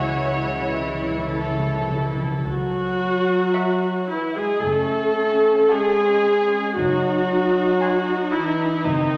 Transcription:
Already playing: C#2 C#3 E3 G#3 E4 F#4 C#5 E5
0.12 C#3
0.21 C#3
0.29 C#3
0.37 C#3
0.45 C#3
0.53 C#3
0.61 C#3
0.69 C#3
0.77 C#3 E4
0.85 C#3
0.93 C#3
1.01 C#3
1.09 C#3
1.18 C#3
1.25 C#3
1.33 C#3 A4
1.41 C#3
1.49 C#3
1.58 C#3
1.65 C#3
1.73 C#3
1.82 C#3
1.90 C#3
1.99 C#3
2.06 C#3
2.15 C#3
2.23 C#3
2.31 C#3
2.39 C#3
2.47 C#2 F#3 F#4
3.56 E5 C#6
4.11 E3 E4
4.36 G#3 G#4
4.62 F#1 A3 C#4 A4
5.70 G#3 G#4 F#5 A5 C#6
6.76 F#1 F#3 D#4 F#4
7.82 D#4 G#5 C6
8.34 E3 E4
8.85 F#1 D#3 C4 D#4

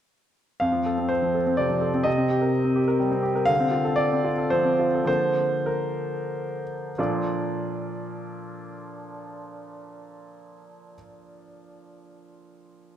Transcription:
0.60 F2 F5
0.72 F3
0.86 A4
0.98 C4
1.09 C5
1.22 F3
1.34 A4
1.46 C4
1.57 C3 D5
1.70 F3
1.81 A4
1.94 C4
2.03 C3 D#5
2.17 C4
2.30 G4
2.42 A#4
2.64 C4
2.76 G4
2.88 A#4
3.00 G3
3.11 C4
3.23 G4
3.35 A#4
3.45 D3 F5
3.60 C4
3.71 F4
3.85 A4
3.96 D5
4.12 C4
4.25 F4
4.38 A4
4.50 F3 C5
4.64 C4
4.79 F4
4.95 A4
5.04 D3 F3 A#3 A4 C5
5.66 A#4
6.98 A#2 F3 D4 F4 A4 D5

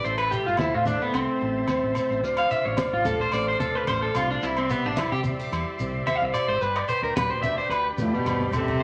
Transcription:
0.04 A1 A2 E4 C5 E5 A5, muted conga, shekere
0.18 B4, low agogo
0.31 E4 G4, shekere
0.46 G1 F4, shekere
0.57 C4 E4, muted conga, high conga, low agogo, shekere
0.74 A2 F4
0.85 A3 D4 E4, high conga, shekere
1.01 B3, shekere
1.13 C2 C4, muted conga, low agogo, shekere
1.40 A1 E3 E4, muted conga
1.68 C5, high conga, low agogo, shekere
1.83 A1
1.95 C4, low agogo, shekere
2.11 A1, shekere
2.23 D2 D3 C5 D5 F5 C6, muted conga, shekere
2.37 F5, low agogo
2.50 F4 E5, shekere
2.65 A1 C#5
2.77 C5, muted clean electric guitar stroke, muted conga, high conga, low agogo, shekere
2.93 A1 F4
3.04 A3 F4 A4, high conga, low conga, shekere
3.20 C5, shekere
3.32 A1 C4 D5, muted conga, low agogo, shekere
3.48 C5
3.60 A2 F4 A4, muted conga, high conga, shekere
3.75 B4
3.87 A1 C5, high conga, low agogo, shekere
4.02 A4
4.15 C2 D3 F4, low agogo, shekere
4.31 D4, shekere
4.43 C2 C3 G3 E4 D5 E5, muted conga, shekere
4.57 C4, low agogo
4.70 B3 G4, shekere
4.85 A1 D4, shekere
4.96 G3 E4, muted conga, high conga, low agogo, shekere
5.12 C3 G4
5.24 G3 E4, high conga, shekere
5.39 G4, shekere
5.51 E2 E4, muted conga, low agogo, shekere
5.79 C2 C3 G4, muted conga, shekere
6.07 C5 E5, high conga, low agogo, shekere
6.15 F5
6.22 C2, muted clean electric guitar stroke
6.34 E4 D5, low agogo, shekere
6.48 G#1 C5, shekere
6.61 G1 B4 G5 B5, muted steel-string acoustic guitar stroke, muted conga, shekere
6.76 D5, low agogo
6.88 B4 C5, shekere
7.02 D2 A#4, shekere
7.16 G4 B4, muted conga, high conga, low conga, low agogo, shekere
7.29 D2 C5
7.43 D4 B4 E5, high conga, shekere
7.58 C5, shekere
7.69 D2 G4 B4, muted conga, low agogo, shekere
7.97 F1 A2 D3 B4, muted conga, high conga, shekere
8.02 F4
8.13 B2 G4, shekere
8.24 G1 F3, high conga, low agogo, shekere
8.41 high conga
8.51 A1 C3 G3, low conga, low agogo, shekere
8.57 A4
8.68 low conga, shekere
8.79 A1

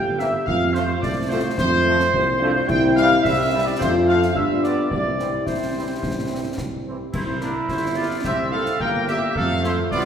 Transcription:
Already playing: G1 G4 G5
0.18 E3 A#3 C4 E4 E5, snare
0.46 F2 F4 F5, concert bass drum
0.74 F3 A3 C4 F4 C5, snare
1.02 C2 A3 D5, concert bass drum, snare
1.28 F3 A3 C4 F4 C5
1.57 F2 C5, concert bass drum, snare
1.85 F3 A3 C4 F4
2.00 snare
2.13 C2 C4, concert bass drum
2.40 F3 A3 C4 D4 F4
2.67 C2 G3 C4 E4 G5, concert bass drum, crash
2.96 E3 G3 F5, snare
3.23 C2 G3 C4 E4 E5, concert bass drum, snare
3.52 E3 G3
3.65 D5
3.79 F2 A3 C4 F4 C5, concert bass drum, snare
4.07 F3 A3 F5
4.22 snare
4.35 G2 G3 B3 D4 F4 E5, concert bass drum
4.63 F3 B3 D5, snare
4.91 C2 G3 C4 E4 D5, concert bass drum
5.19 E3 C4, snare
5.45 C2 G3 C4 E4 C5, concert bass drum, snare
5.77 E3 C4
6.02 C2, concert bass drum, snare
6.31 E3 C4
6.58 C2, concert bass drum, snare
6.86 E3 C4
7.13 C2 E4 C5, concert bass drum, crash
7.40 G3 A#3 D4 E4 A#4, snare
7.69 G1 E4 C5, concert bass drum, snare
7.96 G3 A#3 E4 F4 D5
8.24 C2 C4 G4 E5, concert bass drum, snare
8.51 G3 A#3 E4 A4 F5
8.66 snare
8.80 G1 A#3 A#4 G5, concert bass drum
9.07 G3 A#3 E4 G4 E5, snare
9.35 F2 A3 A4 F5, concert bass drum
9.63 F3 A3 E4 F4 C5, snare
9.90 C2 B3 F4 D5, concert bass drum, snare

